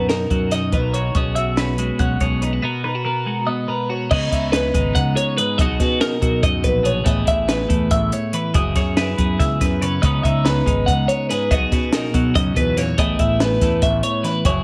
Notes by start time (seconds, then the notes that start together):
Already playing: F#2 B2 F#4 A#4
0.09 D#4 A#4, snare, closed hi-hat
0.30 F#2 F#3 F#4, kick, closed hi-hat
0.51 D#4 D#5, snare, closed hi-hat
0.72 B1 B2 A#4 B4, kick, closed hi-hat
0.94 F#4 C#5, closed hi-hat
1.15 B1 B2 C#4 F#4 G#4 D#5, kick, closed hi-hat
1.35 F#4 E5, closed hi-hat
1.57 C#4 B4, snare, closed hi-hat
1.78 G#3 F#4, closed hi-hat
1.99 B1 C#4 F#5, kick, closed hi-hat
2.20 B1 B2 G#4 C#5, kick, closed hi-hat
2.42 D#4 B4, closed hi-hat
2.53 F#4
2.62 B2 B3 F#4 A#4 D#5
2.84 D#4 B4
2.95 F#4
3.05 B3 A#4
3.26 G#3 F#4
3.47 B3 D#5
3.68 B2 A#4 B4
3.90 F#4 C#5
4.11 C#2 C#3 B3 D#4 B4 D#5, kick, crash
4.32 C#2 D#4 E5, kick, closed hi-hat
4.52 B3 B4, snare, closed hi-hat
4.74 G#1 G#3 D#4, kick, closed hi-hat
4.95 C#2 F#5, kick, closed hi-hat
5.16 C#5, closed hi-hat
5.37 G#2 G#4 B4, closed hi-hat
5.58 B1 B2 D#4 F#4 D#5, kick, closed hi-hat
5.62 G#4
5.80 B2 F#4 B4, kick, snare, closed hi-hat
6.01 D#4 A#4, snare, closed hi-hat
6.21 B2 F#3 F#4, kick, closed hi-hat
6.43 F#2 D#5, kick, closed hi-hat
6.64 A#1 B4, kick, closed hi-hat
6.83 B2 G#4 C#5, closed hi-hat
7.04 A1 A2 B3 E4 G#4 D#5, kick, closed hi-hat
7.26 A1 E4 E5, kick, closed hi-hat
7.48 B3 B4, snare, closed hi-hat
7.69 E2 A3 E4, kick, closed hi-hat
7.91 A1 E5, kick, closed hi-hat
8.12 C#5, closed hi-hat
8.33 E3 B4, closed hi-hat
8.54 F#1 F#3 E4 G#4 D#5, kick, closed hi-hat
8.76 F#2 G#4 C#5, kick, snare, closed hi-hat
8.97 E4 B4, snare, closed hi-hat
9.17 F#2 B3 G#4, kick, closed hi-hat
9.40 C#2 E5, kick, snare, closed hi-hat
9.61 F#2 B4, kick, snare, closed hi-hat
9.82 C#3 B4 C#5, closed hi-hat
10.02 C#2 C#3 B3 D#4 B4 D#5, kick, closed hi-hat
10.23 C#2 D#4 E5, kick, closed hi-hat
10.45 B3 B4, snare, closed hi-hat
10.66 G#1 G#3 D#4, kick, closed hi-hat
10.86 C#2 F#5, kick, closed hi-hat
11.08 C#5, closed hi-hat
11.29 G#2 G#4 B4, snare, closed hi-hat
11.50 B1 B2 D#4 F#4 G#4 D#5, kick, closed hi-hat
11.72 B2 F#4 B4, kick, snare, closed hi-hat
11.93 D#4 A#4, snare, closed hi-hat
12.14 B2 F#3 F#4, kick, closed hi-hat
12.35 F#2 C#3 D#5, kick, closed hi-hat
12.55 E2 B2 B4, kick, closed hi-hat
12.77 A#2 C#5, snare, closed hi-hat
12.98 A1 A2 B3 E4 G#4 D#5, kick, closed hi-hat
13.19 A1 E4 E5, kick, closed hi-hat
13.40 B3 B4, snare, closed hi-hat
13.61 E2 A3 E4, kick, snare, closed hi-hat
13.82 A1 E5, kick, closed hi-hat
14.03 C#5, closed hi-hat
14.23 E3 B4, snare, closed hi-hat
14.45 F#1 F#3 E4 G#4 C#5, kick, closed hi-hat